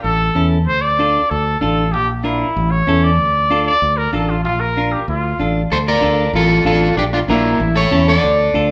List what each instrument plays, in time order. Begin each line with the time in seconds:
0.03 fingered electric bass A1, trumpet A4
0.35 fingered electric bass E2, clean electric guitar C#4 E4 A4
0.67 fingered electric bass D2, trumpet C5
0.81 trumpet D5
0.99 clean electric guitar D4 F4 A4
1.30 fingered electric bass D2, trumpet A4
1.60 fingered electric bass A1, clean electric guitar D4 F4 A4, trumpet A4
1.92 fingered electric bass A#1, trumpet G4
2.24 clean electric guitar D4 F4 A#4, trumpet E4
2.56 fingered electric bass A1
2.71 trumpet C#5
2.87 fingered electric bass E2, clean electric guitar C#4 E4 A4
3.04 trumpet D5
3.19 fingered electric bass D2
3.50 clean electric guitar D4 F4 A4
3.67 trumpet D5
3.82 fingered electric bass D2
3.97 trumpet A#4
4.13 fingered electric bass A1, clean electric guitar D4 F4 A4, trumpet A4
4.30 trumpet F4
4.44 fingered electric bass A#1, trumpet F4
4.60 trumpet A#4
4.77 clean electric guitar D4 F4 A#4
4.92 trumpet G4
5.08 fingered electric bass D2, trumpet F4
5.39 fingered electric bass A1, clean electric guitar D4 F4 A4
5.72 fingered electric bass D2, clean electric guitar A4 C5
5.88 clean electric guitar A#4 D5
6.01 fingered electric bass D2, clean electric guitar D4 F4 A4
6.33 fingered electric bass A1, clean electric guitar F4 A4
6.65 fingered electric bass A1, clean electric guitar D4 F4 A4
6.97 fingered electric bass A#1, clean electric guitar D4 G4
7.13 clean electric guitar D4 F4
7.28 fingered electric bass A#1, clean electric guitar A#3 D4 E4 F4 A#4
7.60 fingered electric bass A1
7.76 clean electric guitar A4 C#5
7.91 fingered electric bass E2, clean electric guitar C#4 E4 A4
8.08 clean electric guitar A4 D5
8.24 fingered electric bass D2
8.54 fingered electric bass D2, clean electric guitar D4 F4 A4